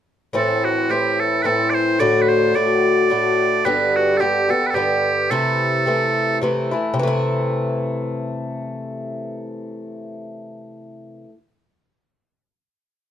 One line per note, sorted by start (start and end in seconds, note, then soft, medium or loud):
0.33 0.88 A2 medium
0.33 0.89 E3 medium
0.33 0.90 C4 medium
0.33 0.90 E4 medium
0.33 0.64 A4 medium
0.64 0.90 F#4 medium
0.89 1.43 A2 soft
0.89 1.44 E3 medium
0.89 1.44 C4 soft
0.89 1.45 E4 medium
0.89 1.20 G4 medium
1.20 1.42 A4 medium
1.42 1.98 A2 medium
1.42 2.00 E3 medium
1.42 2.00 C4 soft
1.42 2.00 E4 medium
1.42 1.70 A4 medium
1.42 1.46 B4 medium
1.70 1.74 D5 medium
1.74 2.00 C5 medium
1.99 2.53 A2 medium
1.99 2.55 D3 medium
1.99 2.55 A3 medium
1.99 2.56 F#4 medium
1.99 2.22 D5 medium
2.22 2.29 B4 medium
2.29 2.55 C5 medium
2.54 3.09 A2 soft
2.54 3.10 D3 soft
2.54 3.10 A3 soft
2.54 3.11 F#4 soft
2.54 3.65 D5 medium
3.10 3.65 A2 medium
3.10 3.65 D3 soft
3.10 3.66 A3 medium
3.10 3.66 F#4 medium
3.65 4.19 G2 medium
3.65 4.20 D3 medium
3.65 4.20 B3 medium
3.65 4.21 G4 medium
3.65 3.96 B4 medium
3.96 4.17 F#4 medium
4.17 4.50 G2 medium
4.17 4.50 D3 soft
4.17 4.50 G4 medium
4.17 4.21 A4 medium
4.22 4.49 B3 soft
4.22 4.48 G4 medium
4.49 4.74 D3 soft
4.49 4.75 B3 soft
4.49 4.76 G4 soft
4.49 4.66 A4 medium
4.66 4.75 A4 medium
4.66 4.70 B4 medium
4.74 5.30 G2 medium
4.74 5.31 D3 medium
4.74 5.31 B3 medium
4.74 5.31 G4 medium
4.74 5.32 G4 medium
5.31 5.85 C3 medium
5.31 5.87 E3 medium
5.31 5.87 A3 medium
5.31 5.88 E4 medium
5.31 6.38 A4 medium
5.86 6.40 C3 soft
5.86 6.42 E3 soft
5.86 6.42 A3 medium
5.86 6.43 E4 medium
6.41 6.72 C3 medium
6.41 6.72 E3 medium
6.41 6.71 A3 medium
6.41 6.70 E4 medium
6.71 6.98 E3 soft
6.71 6.98 A3 soft
6.71 6.98 E4 soft
6.94 11.24 C3 medium
6.99 11.29 E3 medium
6.99 11.33 A3 medium
7.07 11.37 E4 medium